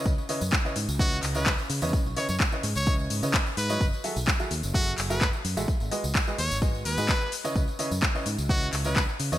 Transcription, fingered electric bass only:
X:1
M:4/4
L:1/16
Q:1/4=128
K:C#m
V:1 name="Fingered electric bass" clef=bass
C,, z2 F,, z2 G,, C,,3 C,,3 z C, E,, | z B,,, z F,, z2 G,, C,,3 G,, C, z2 G,,2 | F,,, z2 B,,, z2 D,, F,,,3 F,,,3 z F,, A,,, | z G,,, z C,, z2 D,, G,,,3 D,, G,, z4 |
C,, z2 F,, z2 G,, C,,3 C,,3 z C, E,, |]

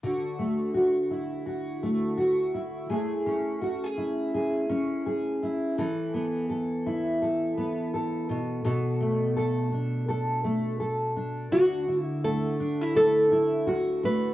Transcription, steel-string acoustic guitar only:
X:1
M:4/4
L:1/16
Q:"Swing 16ths" 1/4=84
K:Dlyd
V:1 name="Steel-string acoustic guitar"
[D,F]2 A,2 F2 E2 F2 A,2 F2 E2 | [A,G]2 C2 F G E2 G2 C2 G2 E2 | [E,A]2 B,2 A2 E2 A2 B,2 A2 B,,2 | [B,,A]2 A,2 A2 D2 A2 A,2 A2 D2 |
[D,F]2 E2 A,2 D E A,2 E2 F2 A,2 |]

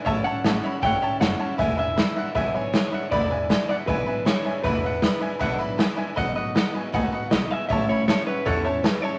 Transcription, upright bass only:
X:1
M:4/4
L:1/8
Q:1/4=157
K:Emix
V:1 name="Upright bass" clef=bass
A,,, z A,,, z =G,,, z F,,, z | E,,,3 z B,,,3 z | E,,,3 z B,,,3 z | E,,,3 z B,,,3 z |
B,,,3 z C,, z B,,, z | A,,,3 z E,,3 z |]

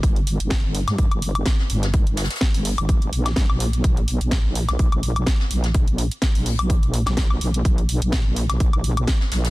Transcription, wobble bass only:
X:1
M:4/4
L:1/16
Q:"Swing 16ths" 1/4=126
K:Gm
V:1 name="Wobble bass" clef=bass
G,,,3 G,,,2 G,,,2 G,, G,, G,,,3 z2 G,,,2- | G,,, G,,,2 z2 G,,,2 G,,,3 B,,,2 G,, B,,,3 | B,,,3 B,,,2 B,,,2 B,,, B,,, B,,,3 z2 B,,,2- | B,,, B,,,2 z2 B,,,2 B,,,4 B,,,3 B,,,2 |
B,,,3 B,,,2 B,,,2 B,,, B,,, B,,,3 z2 B,,,2 |]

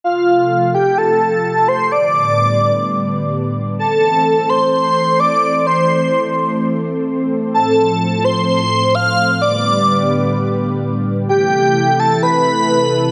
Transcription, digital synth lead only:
X:1
M:4/4
L:1/8
Q:1/4=128
K:Am
V:1 name="Digital synth lead"
F3 G A3 c | d6 z2 | A3 c c2 d2 | c4 z4 |
A3 c c2 f2 | d4 z4 | G3 A B4 |]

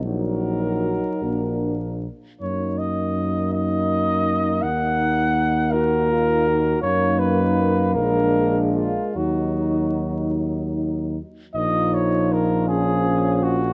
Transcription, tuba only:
X:1
M:6/8
L:1/8
Q:3/8=52
K:Ebm
V:1 name="Tuba" clef=bass
B,,,3 B,,,2 z | G,,6 | E,,6 | G,,3 B,,,3 |
E,,4- E,, z | [K:Bbm] B,,,6 |]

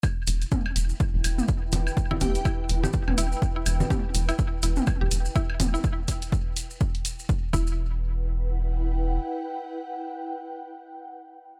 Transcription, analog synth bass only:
X:1
M:4/4
L:1/16
Q:"Swing 16ths" 1/4=124
K:Em
V:1 name="Analog synth bass" clef=bass
z2 E,,, z3 E,,, z2 E,,, E,,, z3 E,,, z | z2 E,,, z3 E,,, z2 E,,, E,,, z3 E,,, z | z2 E,,, z3 E,,, z2 E,,, E,,, z3 E,,, z | z12 z2 E,,,2- |
E,,,12 z4 | z16 |]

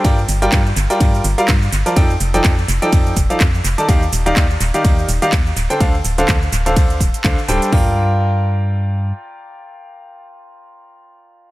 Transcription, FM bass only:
X:1
M:4/4
L:1/8
Q:"Swing 16ths" 1/4=125
K:Gm
V:1 name="FM bass" clef=bass
G,, G,,, G,, G,,, G,, G,,, G,, G,,, | F,, F,,, F,, F,,, F,, F,,, F,, F,,, | E,, E,,, E,, E,,, E,, E,,, E,, D,,, | D,, D,,, D,, D,,, D,, D,,, D,, D,,, |
G,,6 z2 | z8 |]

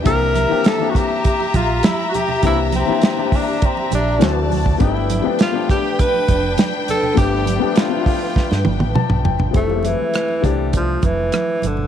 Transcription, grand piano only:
X:1
M:4/4
L:1/16
Q:1/4=101
K:F
V:1 name="Grand piano"
[E,B,CDG]3 [E,B,CDG]2 [E,B,CDG]6- [E,B,CDG] z4 | [E,B,CDG]3 [E,B,CDE]2 [E,B,CDG]6- [E,B,CDG] [E,A,CD^F]3 z | [F,A,=B,DG]3 [F,A,B,DG]2 [F,A,B,DG]6- [F,A,B,DG] z4 | [F,A,=B,DG]3 [F,A,B,DG]2 [F,A,B,DEF]6- [F,A,B,DEF] a2 g2 |
[F,G,A,CE] [E,G,_A,=A,CE]4 z [E,G,A,CD]6- [E,G,A,CD] z3 |]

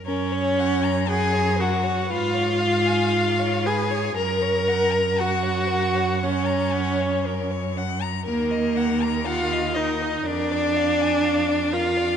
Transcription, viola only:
X:1
M:4/4
L:1/8
Q:1/4=59
K:F#
V:1 name="Viola"
C2 G F E3 G | A2 F2 C3 z | A,2 E D =D3 E |]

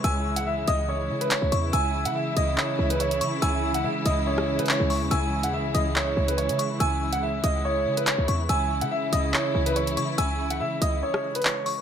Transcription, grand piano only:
X:1
M:4/4
L:1/16
Q:1/4=142
K:C#m
V:1 name="Grand piano"
g3 f e2 d2 c3 B c2 z2 | g3 f e2 d2 c3 B c2 z2 | g3 f e2 d2 c3 B c2 z2 | g3 f e2 d2 c3 B c2 z2 |
g3 f e2 d2 c3 B c2 z2 | g3 f e2 d2 c3 B c2 z2 | g3 f e2 d2 c3 B c2 z2 |]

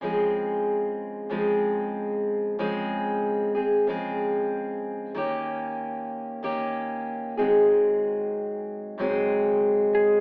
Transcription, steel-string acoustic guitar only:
X:1
M:4/4
L:1/8
Q:"Swing 16ths" 1/4=94
K:Db
V:1 name="Steel-string acoustic guitar" clef=bass
[D,F,A,CA]4 [D,F,A,CA]4 | [D,F,A,CA]3 [A,CA] [D,F,A,CA]4 | [E,B,D=G]4 [E,B,DG]3 [A,,E,_G,A,CA]- | [A,,E,G,A,CA]4 [A,,E,G,A,CA]4 |]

